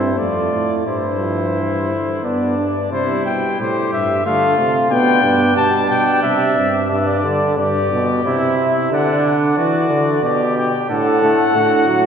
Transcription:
Already playing: G2 C4 E4 C5
0.18 F2 A3 F4 D5
0.53 A2
0.86 G2 G3 E4 C5
1.19 F3
1.54 E3
1.89 D3
2.23 G2 B3 D4 D5
2.57 D4
2.91 C3 G3 E4 C5
3.26 B2 G5
3.59 A2 G3 G4 C5
3.93 G2 E5
4.25 D3 A3 F4 F5
4.57 C3 A3
4.90 B2 B3 D4 G5
5.23 G2 B3
5.56 B2 G3 A5
5.89 B2 G5
6.23 C3 G3 E5
6.57 G2 C4
6.90 G2 D4 D5
6.99 E5
7.06 D5
7.24 D3
7.57 G2 G4 D5
7.92 B2
8.25 C3 E4 E5
8.59 E5
8.91 D3 D4 F#5
9.26 F#5
9.57 E3 F#4 D5
9.90 D3
10.23 B2 G4 D5
10.57 G5
10.89 A2 D3 A4 F#5
11.23 A3
11.56 A2 D3 F#4
11.88 F#3

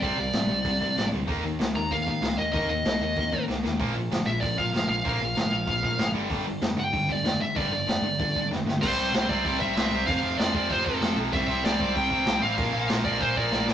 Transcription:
0.00 C2 C3 G3 C4 D5, kick, open hi-hat
0.18 C2 C3 G3
0.33 A1 C3 G3, snare, open hi-hat
0.48 C2 C3 G3
0.65 C2 C3 G3, kick, open hi-hat
0.81 C3 G3, kick
0.96 A1 C3 G3, snare, open hi-hat
1.11 D2 C3 G3
1.27 D#2 D#3 A#3 D#4, kick, open hi-hat
1.43 D#2 D#3 A#3
1.59 C2 D#3 A#3, snare, open hi-hat
1.74 D#2 D#3 A#3 A#5
1.91 D#2 D#3 A#3 F5, kick, open hi-hat
2.07 D#3 A#3, kick
2.21 C2 D#3 A#3, snare, open hi-hat
2.36 D#2 D#3 A#3 D#5
2.52 D#2 D#3 A#3 D#4 D#5, kick, open hi-hat
2.67 D#2 D#3 A#3
2.83 C2 D#3 A#3, snare, open hi-hat
3.00 D#2 D#3 A#3
3.16 D#2 D#3 A#3, kick, open hi-hat
3.32 D#3 A#3, kick
3.48 C2 D#3 A#3, snare
3.64 D#2 D#3 A#3, snare
3.79 A#1 A#2 F3 A#3, kick, open hi-hat
3.96 A#1 A#2 F3
4.11 G1 A#2 F3, snare, open hi-hat
4.26 A#1 A#2 F3 E5
4.41 A#1 A#2 F3 D5, kick, open hi-hat
4.57 A#2 F3 F5, kick
4.72 G1 A#2 F3, snare, open hi-hat
4.89 A#1 A#2 F3 F5
5.04 A#1 A#2 F3 A#3, kick, open hi-hat
5.20 A#1 A#2 F3
5.36 G1 A#2 F3, snare, open hi-hat
5.51 A#1 A#2 F3
5.67 A#1 A#2 F3, kick, open hi-hat
5.83 A#2 F3, kick
5.98 G1 A#2 F3, snare, open hi-hat
6.14 G1 G2 D3 G3
6.30 G1 G2 D3 G3, kick, open hi-hat
6.45 G1 G2 D3
6.61 F1 G2 D3, snare, open hi-hat
6.76 G1 G2 D3 G5
6.92 G1 G2 D3, kick, open hi-hat
7.09 G2 D3 D5, kick
7.23 F1 G2 D3, snare, open hi-hat
7.39 G1 G2 D3 E5
7.55 G1 G2 D3 G3 D5, kick, open hi-hat
7.71 G1 G2 D3
7.87 F1 G2 D3, snare, open hi-hat
8.02 G1 G2 D3
8.19 G1 G2 D3, kick, open hi-hat
8.35 G2 D3, kick
8.50 F1 G2 D3, snare
8.66 G1 G2 D3, snare
8.82 C2 C3 G3 C4 C5, kick, crash
8.97 C2 C3 G3 C4
9.13 C2 C3 G3 C4, snare, open hi-hat
9.29 C2 C3 G3 C4 D5, kick
9.45 C2 C3 G3 C4, kick, open hi-hat
9.60 C2 C3 G3 C4 E5, kick
9.75 C2 C3 G3 C4, snare, open hi-hat
9.91 C2 C3 G3 C4
10.07 F1 F2 C3 F3 F5, kick, open hi-hat
10.22 F1 F2 C3 F3
10.37 F1 F2 C3 F3 D5, snare, open hi-hat
10.54 F1 F2 C3 F3 D5, kick
10.70 F1 F2 C3 F3 C5, kick, open hi-hat
10.86 F1 F2 C3 F3 A4, kick
11.01 F1 F2 C3 F3, snare, open hi-hat
11.17 B1 F2 C3 F3
11.33 C2 C3 G3 C4 E5, kick, open hi-hat
11.48 C2 C3 G3 C4
11.63 C2 C3 G3 C4 D5, snare, open hi-hat
11.80 C2 C3 G3 C4, kick
11.95 C2 C3 G3 C4 G5, kick, open hi-hat
12.11 C2 C3 G3 C4, kick
12.26 C2 C3 G3 C4, snare, open hi-hat
12.42 A1 C3 G3 C4 F5
12.57 A#1 A#2 F3 A#3, kick, open hi-hat
12.74 A#1 A#2 F3 A#3
12.89 A#1 A#2 F3 A#3, snare, open hi-hat
13.04 A#1 A#2 F3 A#3 D5, kick
13.20 A#1 A#2 F3 A#3 C5, kick, open hi-hat
13.35 A#1 A#2 F3 A#3 D5, kick
13.52 A#1 A#2 F3 A#3, snare
13.67 A#1 A#2 F3 A#3, snare

